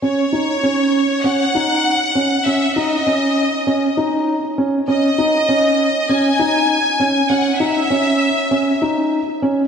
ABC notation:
X:1
M:4/4
L:1/8
Q:1/4=99
K:C#m
V:1 name="Violin section"
c4 f4 | e d4 z3 | d4 g4 | f e4 z3 |]
V:2 name="Felt piano"
C D C2 C D2 C | C D C2 C D2 C | C D C2 C D2 C | C D C2 C D2 C |]